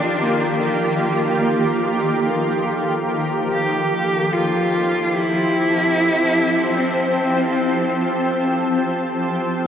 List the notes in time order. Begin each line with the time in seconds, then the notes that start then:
Already playing: D#3 F3 A#3 D4 F4 G4 A4
0.23 A#3
3.51 F3 G4
3.70 C4
4.33 F4
5.04 A5
5.14 E4
6.78 C4